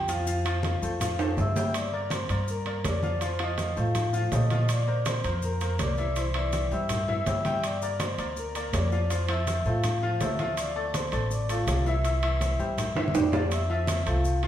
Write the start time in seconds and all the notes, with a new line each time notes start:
Already playing: F2
0.08 F3 F4 F5, high timbale, maracas
0.27 F3 F4 F5, high conga, maracas
0.45 F3 F4 F5, high conga, high timbale, maracas
0.63 high conga, high timbale, maracas
0.82 F2 A3 A4 C5, maracas
1.00 F3 F4 F5, high conga, low conga, high timbale, maracas
1.19 A3 A4 C5, high conga, high timbale, maracas
1.37 G2 E5 E6, high conga, low timbale, maracas
1.56 G3 G4 G5, high conga, low timbale, maracas
1.74 D5 D6, high timbale, maracas
1.92 A#3 A#4 D5, high conga
2.10 C5 C6, high conga, high timbale, low timbale, maracas
2.29 G2 A#3 A#4 D5, high timbale, maracas
2.48 A#4 A#5, high conga, maracas
2.66 A#3 A#4 D5, high conga, high timbale
2.84 F2 D5 D6, high conga, high timbale, low timbale, maracas
3.03 F3 F4 F5, high conga, maracas
3.21 F3 F4 C5 F5 C6, high conga, high timbale, maracas
3.39 F3 F4 D#5 F5 D#6, high conga, high timbale
3.58 high conga, high timbale, low timbale, maracas
3.76 A2 A3 F4 A4 C5 F5, high conga, maracas
3.95 high conga, low conga, high timbale, maracas
4.13 F3 F4 F5, high conga, maracas
4.32 A#2 A3 A4 C5 D#5 D#6, high conga, high timbale, low timbale, maracas
4.50 F3 F4 F5, high conga, high timbale, maracas
4.69 D5 D6, high conga, high timbale, maracas
4.87 A#3 A#4 C5, high conga
5.05 C5 C6, high conga, high timbale, low timbale, maracas
5.24 F2 A#3 A#4 C5, high timbale, maracas
5.42 A#4 A#5, high conga, maracas
5.61 A#3 A#4 C5, high conga, high timbale, maracas
5.79 C2 D5 D6, high conga, high timbale, low timbale, maracas
5.97 E3 E4 E5, maracas
6.16 E3 E4 C5 E5 C6, high conga, high timbale, maracas
6.34 E3 E4 D5 E5 D6, high conga, high timbale
6.52 high conga, high timbale, low timbale, maracas
6.71 G2 G3 G4 C5 E5 E6, high conga, maracas
6.89 high conga, low conga, high timbale, maracas
7.08 E3 E4 E5, high conga, low conga
7.26 G2 G3 G4 C5 E5 E6, high conga, high timbale, low timbale, maracas
7.45 G3 G4 G5, high conga, high timbale, maracas
7.63 D5 D6, high conga, high timbale, maracas
7.81 A#3 A#4 D5, high conga, maracas
8.00 C5 C6, high conga, high timbale, low timbale, maracas
8.18 D2 A#3 A#4 D5, high timbale, maracas
8.37 A#4 A#5, high conga, maracas
8.55 A#3 A#4 D5, high conga, high timbale, maracas
8.73 F2 D5 D6, high conga, high timbale, low timbale, maracas
8.92 F3 F4 F5, maracas
9.10 F3 F4 C5 F5 C6, high conga, high timbale, maracas
9.29 F3 F4 C5 E5 E6, high conga, high timbale
9.47 high conga, high timbale, low timbale, maracas
9.65 A2 A3 F4 A4 C5 F5, high conga, maracas
9.84 high conga, low conga, high timbale, maracas
10.03 F3 F4 F5, high conga
10.20 D2 A3 A4 C5 E5 E6, high conga, high timbale, low timbale, maracas
10.39 F3 F4 F5, high conga, high timbale, maracas
10.57 D5 D6, high conga, high timbale, maracas
10.76 A3 A4 D5, high conga
10.94 C5 C6, high conga, high timbale, low timbale, maracas
11.12 A1 A3 A4 D5, high timbale, maracas
11.31 D5 D6, high conga, maracas
11.49 A3 F4 A4 D5 F5, high conga, high timbale, maracas
11.67 C2, high conga, high timbale, low timbale, maracas
11.86 E3 E4 E5 E6, maracas
12.04 E3 E4 E5, high conga, high timbale, maracas
12.22 E3 E4 E5, high conga, high timbale
12.41 high conga, high timbale, low timbale, maracas
12.59 G2 G3 G4 C5, high conga, maracas
12.78 high conga, low conga, high timbale, maracas
12.95 E3 E4 E5, high conga, high timbale
13.08 high conga
13.14 F2 G3 G4 C5 D5 D6, high timbale, maracas
13.20 low conga
13.32 F3 F4 F5, low conga, low timbale, maracas
13.51 E5 E6, high conga, high timbale, maracas
13.69 F3 F4 E5, high conga
13.87 high conga, high timbale, low timbale, maracas
14.06 C2 A3 F4 A4 C5 F5, high timbale, maracas
14.24 high conga, maracas
14.43 F3 F4 F5, high conga, high timbale